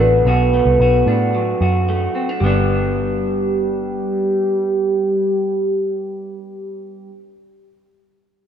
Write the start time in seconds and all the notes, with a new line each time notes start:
Already playing: A1 B2 A3 F#4
0.00 D4 B4
0.25 B1 B2 F#4
0.54 A3
0.65 C2
0.80 B1 F#4
1.06 A2 D4
1.35 F#3
1.61 F#2 F#4
1.89 A3
2.15 C4
2.29 D4
2.40 G1 G3 B3 G4
2.46 D4